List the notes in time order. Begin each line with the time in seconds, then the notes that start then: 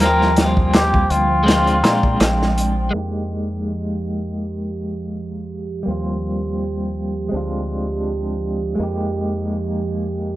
Already playing: F3 G3 G5
0.00 D#2 A#3 C4 A#4, snare, closed hi-hat
0.06 F4
0.22 snare
0.36 snare, closed hi-hat
0.57 kick
0.73 G4, snare, closed hi-hat, darbuka tek
0.94 kick
1.10 D2 F4, closed hi-hat
1.43 G#3 C4
1.48 D4 F4, snare, closed hi-hat
1.67 closed hi-hat
1.83 A#2, snare, closed hi-hat
2.03 kick
2.20 A#1, snare, closed hi-hat, darbuka tek
2.42 snare
2.58 closed hi-hat
2.91 F2 F3 G#3 A#3 G4
2.96 D#4 G4
5.83 G3 A#3
5.87 D#2 C4 F4
7.29 G#3 C4
7.33 D2 D4 F4
8.75 F2 G#3 A#3
8.80 D#4 G4